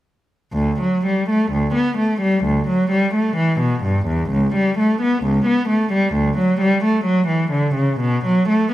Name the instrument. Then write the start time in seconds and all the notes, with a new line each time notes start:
cello
0.53 D2
0.81 F#3
1.06 G3
1.30 A3
1.52 D2
1.75 B3
1.98 A3
2.22 G3
2.45 D2
2.69 F#3
2.91 G3
3.15 A3
3.37 E3
3.60 B2
3.84 G2
4.07 E2
4.30 C#2
4.55 G3
4.79 A3
5.02 B3
5.24 C#2
5.47 B3
5.69 A3
5.93 G3
6.15 D2
6.39 F#3
6.61 G3
6.84 A3
7.05 F#3
7.28 E3
7.52 D3
7.75 C#3
8.00 B2
8.26 F#3
8.50 A3